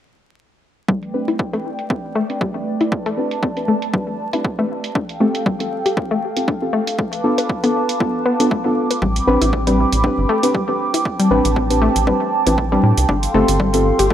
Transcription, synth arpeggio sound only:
0.88 G3
1.28 E4
1.53 A3
1.90 C4
2.15 A3
2.41 G3
2.81 E4
3.06 A3
3.43 C4
3.68 A3
3.93 G3
4.33 E4
4.59 A3
4.95 D4
5.20 A3
5.46 G3
5.86 G4
6.11 A3
6.48 D4
6.73 A3
6.99 A3
7.38 B4
7.64 B3
8.00 F4
8.26 B3
8.51 A3
8.91 B4
9.02 G3
9.41 E4
9.67 G3
10.04 C4
10.29 A3
10.54 G3
10.94 E4
11.19 G3
11.56 C4
11.82 A3
12.07 G3
12.47 E4
12.72 G3
13.09 D4
13.34 A3
13.60 G3
13.99 G4

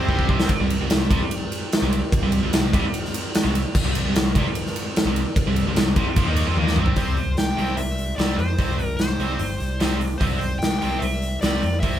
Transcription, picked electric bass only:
0.09 C2
0.29 C2
0.60 C2
0.80 C2
0.91 C2
1.11 C2
1.82 C2
2.22 C2
2.42 C2
2.52 C2
2.74 C2
3.45 C2
3.84 C2
4.04 C2
4.15 C2
4.35 C2
5.05 C2
5.46 C2
5.67 C2
5.77 C2
5.96 C2
6.17 A#1
6.27 D#2
6.47 F2
6.57 D#2
6.77 C2
6.97 C2
7.16 C2
7.37 C2
7.58 C2
7.77 C2
8.18 C2
8.37 F2
8.59 C2
8.78 C2
9.00 C2
9.19 C2
9.39 G1
9.60 C2
9.80 C2
10.21 C2
10.41 C2
10.62 C2
10.82 C2
11.02 C2
11.43 C2
11.63 F2
11.83 C2

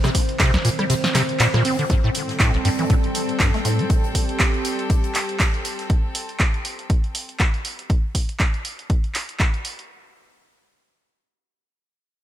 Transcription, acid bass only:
0.04 C3
0.40 C3
0.54 C2
0.65 A#2
0.79 G3
0.90 C3
1.15 C3
1.40 A#2
1.54 A#2
1.65 C4
1.79 D3
1.90 A2
2.04 A2
2.40 A2
2.54 A1
2.65 G2
2.79 E3
2.90 A2
3.40 G2
3.54 A3
3.65 A2
3.79 A3

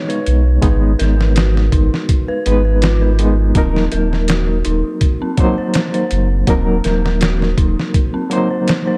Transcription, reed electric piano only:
Already playing: G#3 B3 D#4 C#5
0.62 G#3 B3 D#4
2.46 G#3 B3 D#4 B4
3.19 G#3 B3 D#4
3.55 F#3 A#3 D#4 A#4
5.37 F#3 A#3 D#4 C5
6.47 F#3 A#3 D#4 A#4
8.30 F#3 A#3 D#4 C5

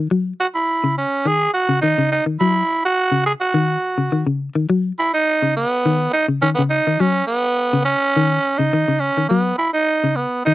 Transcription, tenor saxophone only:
0.40 F#4
0.55 E4
0.98 C#4
1.27 G#4
1.54 F#4
1.81 D#4
2.12 D#4
2.40 E4
2.85 F#4
3.26 G#4
3.41 F#4
4.99 E4
5.14 D#4
5.57 B3
6.13 D#4
6.42 C#4
6.55 B3
6.70 D#4
7.00 C#4
7.27 B3
7.85 C#4
8.58 D#4
9.00 C#4
9.29 B3
9.58 E4
9.73 D#4
10.16 B3
10.45 D#4

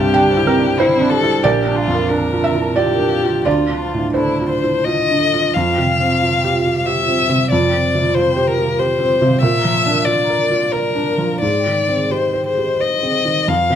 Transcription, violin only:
Already playing: G4
0.78 E4
1.10 A4
1.43 G4
1.76 F4
2.09 A#4
2.76 G4
3.44 F4
4.15 E4
4.49 C5
4.84 D#5
5.54 F5
6.86 E5
7.51 D5
8.14 C5
8.47 A#4
8.79 C5
9.41 E5
10.05 D5
10.72 A#4
11.41 D5
12.11 C5
12.46 C5
12.81 D#5
13.48 F5

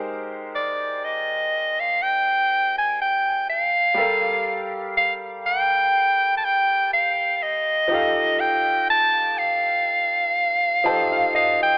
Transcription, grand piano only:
Already playing: G#3 D#4 G4 A#4 C5
3.94 G3 G4 A4
3.99 A#4 F5
7.88 F3 D#4 G4
7.93 A4 F5
10.84 F3 D#4 G4 A4 C5 A5
11.12 F5
11.35 D#5

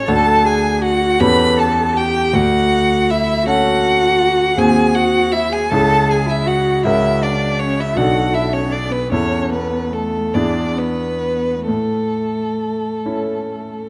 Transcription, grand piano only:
0.08 D2 D4 F#4 A4
1.20 E2 C#4 G4 A4
2.33 D2
3.47 C#4 F#4 A4
4.57 D#2 C4 F#4 G#4
5.72 C#2 C#4 E4 G#4
6.85 C#2 C#4 F#4 A#4
7.96 B1 D4 F#4 A4
9.12 E2 C#4 E4 A4
10.35 E2 D4 E4 G#4
11.68 A2
13.06 C#4 E4 A4

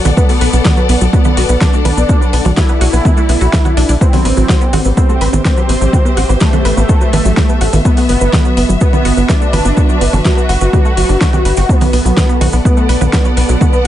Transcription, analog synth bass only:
0.05 B1
0.41 B1
0.53 B1
0.89 B1
1.01 B1
1.37 B1
1.49 B1
1.85 B1
1.97 B1
2.33 B1
2.45 B1
2.81 B1
2.93 B1
3.29 B1
3.41 B1
3.77 B1
3.89 B1
4.25 A1
4.37 A1
4.73 A1
4.85 A1
5.21 A1
5.33 A1
5.69 A1
5.81 A1
6.17 A1
6.29 A1
6.65 A1
6.77 A1
7.13 A1
7.25 A1
7.61 A1
7.73 A1
8.09 G1
8.21 G1
8.57 G1
8.69 G1
9.05 G1
9.17 G1
9.53 G1
9.65 G1
10.01 G1
10.13 G1
10.49 G1
10.61 G1
10.97 G1
11.09 G1
11.45 G1
11.57 G1
11.93 B1
12.05 B1
12.41 B1
12.53 B1
12.89 B1
13.01 B1
13.37 B1
13.49 B1

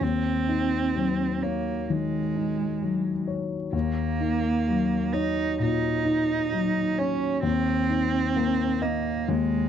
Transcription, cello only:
0.03 C4
1.43 A#3
1.91 G#3
3.75 A#3
5.13 D#4
5.62 D#4
6.98 C#4
7.43 C4
8.82 A#3
9.28 G#3

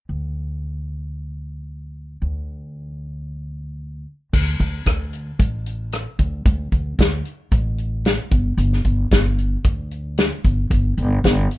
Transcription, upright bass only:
0.09 D2
2.22 D2
4.33 D2
4.60 D2
4.86 D2
5.39 A1
6.19 D2
6.46 D2
6.72 D2
6.99 D2
7.52 A1
8.31 G1
8.57 G1
8.85 G1
9.11 G1
9.64 D2
10.45 G1
10.70 G1
10.97 G1
11.24 G1

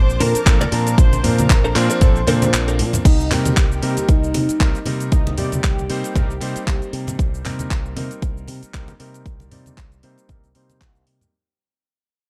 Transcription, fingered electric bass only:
Already playing: A#1
0.21 A#2
0.35 muted fingered electric bass stroke
0.46 A#1
0.72 A#2
0.98 A#1
1.24 A#2
1.50 A#1
1.76 A#2
2.01 A#1
2.27 A#2
2.53 A#1
2.79 A#2
3.05 C2
3.31 C3
3.57 C2
3.83 C3
4.09 C2
4.34 C3
4.49 muted fingered electric bass stroke
4.60 C2
4.86 C3
5.12 C2
5.38 C3
5.64 C2
5.90 C3
6.16 C2
6.41 C3
6.56 muted fingered electric bass stroke
6.67 C2
6.93 C3
7.19 C2
7.45 C3
7.71 C2
7.96 C3
8.22 C2
8.48 C3
8.63 muted fingered electric bass stroke
8.74 C2
9.00 C3
9.26 C2
9.52 C3
9.77 C2
10.04 C3
10.29 C2
10.55 C3
10.81 C2
11.07 C3

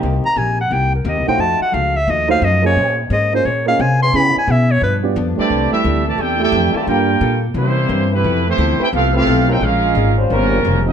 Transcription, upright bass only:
0.03 C2
0.25 muted upright bass stroke
0.36 A#1
0.71 C2
1.05 D#2
1.17 C2
1.28 A#1
1.38 F2
1.60 muted upright bass stroke
1.74 C#2
2.08 D#2
2.42 F#2
2.76 A#2
3.10 G#2
3.45 A#2
3.79 C3
4.14 C#3
4.36 muted upright bass stroke
4.48 B2
4.82 G2
5.16 F2
5.38 muted upright bass stroke
5.50 C2
5.72 muted upright bass stroke
5.85 D2
6.18 E2
6.52 F2
6.74 muted upright bass stroke
6.87 G2
7.21 A#2
7.54 C3
7.89 G2
8.24 F2
8.58 D2
8.80 muted upright bass stroke
8.93 C2
9.27 B1
9.61 A#1
9.95 G#1
10.30 G1
10.64 F1

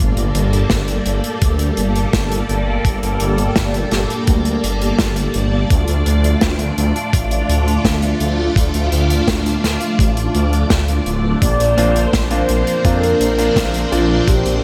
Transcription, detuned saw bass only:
0.00 G1
0.17 G1
0.34 G1
0.70 G1
1.06 G1
1.42 D2
1.78 G1
2.13 G1
2.49 G1
2.85 G1
3.03 G1
3.20 G1
3.56 G1
3.92 G1
4.28 D2
4.63 G1
4.99 G1
5.35 G1
5.71 D2
5.88 D2
6.06 D2
6.42 D2
6.78 D2
7.13 A1
7.49 D2
7.85 D2
8.20 D2
8.56 D2
8.74 D2
8.92 D2
9.28 D2
9.64 D2
9.99 A1
10.35 D2
10.70 D2
11.06 D1
11.42 A#1
11.60 A#1
11.77 A#1
12.13 A#1
12.49 A#1
12.85 F2
13.20 A#1
13.56 A#1
13.92 A#1
14.28 A#1
14.45 A#1

